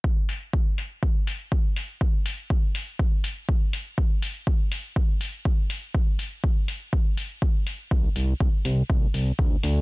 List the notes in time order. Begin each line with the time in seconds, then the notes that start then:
0.04 kick
0.29 open hi-hat
0.53 kick
0.78 open hi-hat
1.03 kick
1.27 open hi-hat
1.52 kick
1.76 open hi-hat
2.01 kick
2.26 open hi-hat
2.50 kick
2.75 open hi-hat
2.99 kick
3.24 open hi-hat
3.49 kick
3.73 open hi-hat
3.98 kick
4.22 open hi-hat
4.47 kick
4.72 open hi-hat
4.96 kick
5.21 open hi-hat
5.45 kick
5.70 open hi-hat
5.95 kick
6.19 open hi-hat
6.44 kick
6.68 open hi-hat
6.93 kick
7.17 open hi-hat
7.42 kick
7.67 open hi-hat
7.91 C2, kick
8.16 C2, open hi-hat
8.40 C2, kick
8.65 C2, open hi-hat
8.90 C2, kick
9.14 C2, open hi-hat
9.39 D2, kick
9.63 D2, open hi-hat